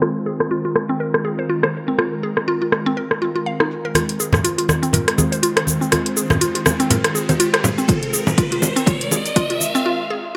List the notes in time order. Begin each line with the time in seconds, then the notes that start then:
Already playing: D#3 G#3 C4 F4
0.02 F4 A#4, cross-stick, shaker
0.26 G#4, shaker
0.40 cross-stick, shaker
0.51 F4
0.65 F4
0.76 cross-stick, shaker
0.89 C4
1.00 A#4
1.14 cross-stick
1.25 G#4, shaker
1.39 C5
1.50 F4, shaker
1.63 C5, cross-stick
1.74 shaker
1.88 C4
1.99 F4, cross-stick, shaker
2.13 shaker
2.23 G#4, shaker
2.37 cross-stick, shaker
2.48 F4, shaker
2.62 F4
2.72 cross-stick, shaker
2.86 C4
2.97 A#4, shaker
3.11 cross-stick, shaker
3.22 F4, shaker
3.36 F4, shaker
3.46 F5, shaker
3.60 D#4, cross-stick, shaker
3.71 shaker
3.85 A#4, shaker
3.95 D#3 G#3 C4 F4 C5, cross-stick, closed hi-hat, mid tom, riser, high conga, shaker
4.09 closed hi-hat
4.20 G#4, shaker
4.33 cross-stick, high conga, low conga, shaker
4.44 F4, closed hi-hat, mid tom, shaker
4.58 F4, closed hi-hat
4.69 cross-stick, high conga, shaker
4.83 C4, closed hi-hat, shaker
4.93 A#4, closed hi-hat, mid tom, high conga, low conga, shaker
5.08 cross-stick, closed hi-hat
5.18 G#4, high conga, shaker
5.32 C5, closed hi-hat, shaker
5.43 F4, closed hi-hat, mid tom, shaker
5.57 C5, cross-stick, closed hi-hat, mid tom
5.67 high conga, shaker
5.81 C4, shaker
5.92 F4, cross-stick, closed hi-hat, mid tom, high conga, shaker
6.06 closed hi-hat
6.17 G#4, shaker
6.30 cross-stick, high conga, low conga, shaker
6.41 F4, closed hi-hat, mid tom, shaker
6.55 F4, closed hi-hat
6.66 cross-stick, high conga, shaker
6.80 C4, closed hi-hat, shaker
6.90 A#4, closed hi-hat, mid tom, low conga, shaker
7.04 cross-stick, closed hi-hat
7.15 G#4, mid tom, shaker
7.29 C5, closed hi-hat, high conga, shaker
7.40 F4, closed hi-hat, mid tom, shaker
7.54 C5, cross-stick, closed hi-hat
7.64 low conga, shaker
7.78 C4, shaker
7.88 F4 A#4, kick, closed hi-hat, high conga, shaker
8.03 closed hi-hat
8.13 G#4, mid tom, shaker
8.27 high conga, low conga, shaker
8.38 F4, kick, closed hi-hat, mid tom, shaker
8.52 F4, closed hi-hat
8.62 mid tom, high conga, shaker
8.76 C4, closed hi-hat, shaker
8.86 F4, kick, closed hi-hat, high conga, low conga, shaker
9.01 closed hi-hat
9.11 G#4, mid tom, high conga, shaker
9.26 closed hi-hat, shaker
9.36 F4, kick, closed hi-hat, shaker
9.50 F4, closed hi-hat, mid tom
9.60 mid tom, high conga, shaker
9.75 C4, shaker
9.86 F4
10.10 G#4